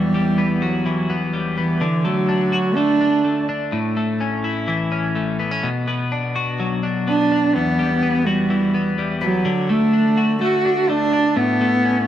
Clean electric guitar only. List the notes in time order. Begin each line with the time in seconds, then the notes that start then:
Already playing: E2 F#3 F#4
0.14 G3
0.38 B3
0.62 F#4
0.86 E3
1.10 B3
1.33 G3
1.57 B3
1.81 D3
2.05 A3
2.29 D4
2.52 F#4
2.77 A3
3.01 D4
3.24 A3
3.49 D4
3.72 A2
3.97 A3
4.21 C#4
4.44 E4
4.68 E3
4.92 C#4
5.15 A3
5.39 B3
5.51 C#4
5.63 B2
5.88 B3
6.12 D4
6.36 F#4
6.60 F#3
6.83 D4
7.07 B3
7.32 D4
7.56 E2
7.79 G3
8.03 B3
8.27 F#4
8.50 E3
8.74 B3
8.98 G3
9.21 B3
9.45 D3
9.69 A3
9.93 D4
10.17 F#4
10.41 A3
10.65 D4
10.89 A3
11.13 D4
11.36 A2
11.61 A3
11.85 C#4